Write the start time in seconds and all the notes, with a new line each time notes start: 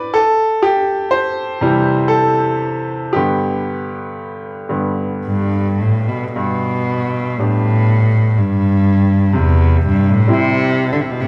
Already playing: B4 D5
0.14 A4
0.63 G4
1.11 C5
1.61 C3 E3 G3
2.08 A4
3.13 G2 D3 B3 G4
4.69 G2 D3 B3
5.26 G2
5.81 A2
6.09 B2
6.33 G2 B2
7.39 A2 G3 B3 D4
8.38 G2
9.33 C3
9.38 E2
9.86 G2
10.11 A2
10.28 G3 C4 E4
10.32 C3
10.93 D3
11.01 C3
11.11 B2
11.21 A2 C3